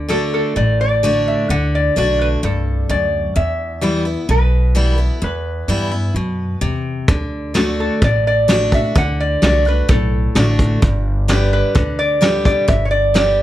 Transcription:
0.00 0.41 D2 medium
0.09 0.53 D3 medium
0.09 0.53 A3 medium
0.09 0.53 D4 medium
0.09 0.54 F#4 medium
0.09 0.33 A4 medium
0.34 0.57 A4 medium
0.56 1.34 A1 medium
0.56 1.44 A2 medium
0.56 0.80 D5 loud
0.81 1.23 D5 loud
1.03 1.47 D3 medium
1.03 1.47 A3 medium
1.03 1.47 D4 loud
1.03 1.48 F#4 loud
1.28 1.50 E5 medium
1.49 1.88 D2 medium
1.49 1.95 D3 medium
1.49 1.73 F#5 medium
1.75 1.97 D5 medium
1.96 2.36 B1 medium
1.96 2.40 D3 medium
1.96 2.40 A3 medium
1.96 2.41 D4 medium
1.96 2.41 F#4 medium
1.96 2.21 D5 medium
2.22 2.27 B4 medium
2.43 2.82 C2 medium
2.43 2.87 G2 medium
2.43 2.91 A4 medium
2.89 3.29 D2 medium
2.89 3.33 F#2 medium
2.89 3.38 D5 medium
3.36 4.24 E2 medium
3.36 4.15 E2 medium
3.36 4.25 E5 loud
3.81 4.04 E3 medium
3.81 4.04 G3 medium
3.81 4.05 B3 medium
3.81 4.04 E4 medium
4.05 4.28 B3 medium
4.05 4.28 E4 medium
4.29 5.08 B1 medium
4.29 5.17 B2 medium
4.29 4.99 B4 medium
4.75 4.97 E3 medium
4.75 4.98 G3 medium
4.75 4.98 B3 loud
4.75 4.97 E4 medium
4.98 5.21 B3 soft
4.98 5.21 E4 medium
4.98 5.23 A4 medium
5.22 6.11 E2 medium
5.22 5.62 E2 medium
5.22 6.59 B4 medium
5.68 6.08 G2 medium
5.68 5.91 E3 medium
5.68 5.91 G3 medium
5.68 5.91 B3 medium
5.68 5.90 E4 medium
5.91 6.15 B3 soft
5.91 6.14 E4 medium
6.14 6.55 F#2 medium
6.14 6.60 B2 medium
6.61 7.01 E2 medium
6.61 7.06 C3 medium
7.08 7.87 D2 medium
7.08 7.53 D3 medium
7.08 kick loud
7.08 closed hi-hat medium
7.54 7.99 D3 medium
7.54 7.99 A3 medium
7.54 8.00 D4 medium
7.54 8.00 F#4 medium
7.54 7.79 A4 medium
7.54 snare loud
7.54 closed hi-hat medium
7.80 8.01 A4 medium
8.02 8.81 A1 medium
8.02 8.91 A2 medium
8.02 8.26 D5 medium
8.02 kick loud
8.02 closed hi-hat medium
8.27 8.74 D5 loud
8.48 8.71 D3 medium
8.48 8.71 A3 medium
8.48 8.71 D4 loud
8.48 8.71 F#4 loud
8.48 snare loud
8.48 closed hi-hat medium
8.72 8.95 D4 soft
8.72 8.95 F#4 medium
8.72 8.97 E5 medium
8.72 kick medium
8.72 closed hi-hat medium
8.95 9.35 D2 loud
8.95 9.41 D3 medium
8.95 9.21 F#5 loud
8.95 kick loud
8.95 closed hi-hat medium
9.20 9.44 D5 loud
9.42 9.82 C2 medium
9.42 9.64 D3 medium
9.42 9.65 A3 medium
9.42 9.65 D4 medium
9.42 9.64 F#4 medium
9.42 9.67 D5 medium
9.42 snare loud
9.42 closed hi-hat medium
9.65 9.89 D4 soft
9.65 9.88 F#4 medium
9.65 9.90 B4 medium
9.89 10.28 B1 medium
9.89 10.77 A2 medium
9.89 10.55 A4 medium
9.89 kick loud
9.89 closed hi-hat medium
10.35 10.75 A1 medium
10.35 10.80 D3 medium
10.35 10.80 A3 medium
10.35 10.80 D4 loud
10.35 10.80 F#4 loud
10.35 snare loud
10.35 closed hi-hat medium
10.59 kick medium
10.59 closed hi-hat medium
10.82 11.61 G1 loud
10.82 11.71 G2 medium
10.82 kick loud
10.82 closed hi-hat medium
11.28 11.73 D3 medium
11.28 11.73 G3 medium
11.28 11.73 B3 medium
11.28 11.74 G4 medium
11.28 11.52 B4 medium
11.28 snare loud
11.28 closed hi-hat medium
11.53 12.00 B4 medium
11.75 12.54 D2 medium
11.75 12.20 D3 medium
11.75 kick loud
11.75 closed hi-hat medium
11.99 12.44 D5 loud
12.21 12.66 D3 medium
12.21 12.66 G3 loud
12.21 12.66 B3 medium
12.21 12.66 G4 loud
12.21 snare loud
12.21 closed hi-hat medium
12.45 12.68 D5 medium
12.45 kick loud
12.45 closed hi-hat medium
12.68 13.43 G1 medium
12.68 13.43 G2 medium
12.68 12.83 E5 medium
12.68 kick loud
12.68 closed hi-hat medium
12.85 12.90 C#5 medium
12.91 13.43 D5 loud
13.14 13.43 D3 medium
13.14 13.43 G3 medium
13.14 13.43 B3 medium
13.14 13.43 G4 loud
13.14 snare loud
13.14 closed hi-hat medium

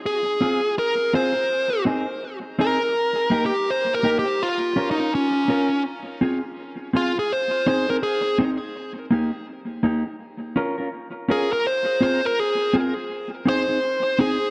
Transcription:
0.06 0.74 G#4 medium
0.41 0.60 C4 medium
0.41 0.60 F4 medium
0.41 0.60 G#4 medium
0.79 1.12 A#4 loud
1.14 1.32 C4 medium
1.14 1.33 F4 medium
1.14 1.33 G#4 medium
1.14 1.83 C5 loud
1.35 muted clean electric guitar stroke soft
1.85 2.05 C4 medium
1.85 2.05 D#4 medium
1.85 2.05 G#4 medium
2.59 2.78 C4 medium
2.59 2.78 D#4 loud
2.59 2.78 G#4 loud
2.59 3.45 A#4 loud
3.30 3.50 A#3 medium
3.30 3.50 D#4 medium
3.30 3.50 G4 medium
3.46 3.69 G4 loud
3.70 3.94 C5 loud
3.94 4.18 A#4 medium
4.03 4.22 A#3 medium
4.03 4.23 D#4 medium
4.03 4.23 G4 loud
4.19 4.42 G4 medium
4.26 muted clean electric guitar stroke medium
4.43 4.90 F4 medium
4.76 4.95 C#4 medium
4.76 4.95 F4 medium
4.76 4.96 A#4 medium
4.91 5.14 D#4 medium
4.98 5.09 C#4 soft
4.98 5.08 F4 medium
4.98 5.08 A#4 medium
5.15 5.82 C#4 medium
5.48 5.67 C#4 medium
5.48 5.68 F4 medium
5.48 5.68 A#4 loud
6.21 6.40 C4 medium
6.21 6.40 F4 medium
6.21 6.41 G#4 medium
6.93 7.12 C4 medium
6.93 7.13 F4 medium
6.93 7.16 F4 medium
6.93 7.13 G#4 medium
7.16 7.32 G#4 loud
7.16 muted clean electric guitar stroke soft
7.33 7.66 C5 loud
7.67 7.85 C4 medium
7.67 7.86 D#4 medium
7.67 7.86 G#4 medium
7.67 7.87 C5 medium
7.89 7.99 C4 medium
7.89 7.98 D#4 medium
7.89 7.98 G#4 medium
7.89 7.95 A#4 medium
8.03 8.36 G#4 medium
8.39 8.57 C4 medium
8.39 8.58 D#4 loud
8.39 8.58 G#4 loud
9.11 9.30 A#3 medium
9.11 9.30 D#4 medium
9.11 9.31 G4 medium
9.83 10.02 A#3 medium
9.83 10.03 D#4 medium
9.83 10.03 G4 medium
10.06 muted clean electric guitar stroke soft
10.56 10.75 C#4 medium
10.56 10.75 F4 medium
10.56 10.76 A#4 medium
10.78 10.88 C#4 medium
10.78 10.88 F4 medium
10.78 10.87 A#4 medium
11.29 11.47 C#4 medium
11.29 11.48 F4 medium
11.29 11.52 G#4 medium
11.29 11.48 A#4 medium
11.53 11.65 A#4 medium
11.67 12.03 C5 loud
12.01 12.20 C4 medium
12.01 12.20 F4 medium
12.01 12.21 G#4 medium
12.01 12.25 C5 loud
12.25 12.39 A#4 medium
12.39 12.75 G#4 medium
12.73 12.92 C4 medium
12.73 12.93 F4 medium
12.73 12.93 G#4 medium
12.96 muted clean electric guitar stroke medium
13.46 13.65 C4 medium
13.46 13.65 D#4 medium
13.46 13.65 G#4 medium
13.46 14.20 C5 medium
13.68 13.78 C4 medium
13.68 13.78 D#4 medium
13.68 13.78 G#4 medium
14.19 14.37 C4 medium
14.19 14.38 D#4 loud
14.19 14.38 G#4 loud
14.19 14.50 G#4 medium

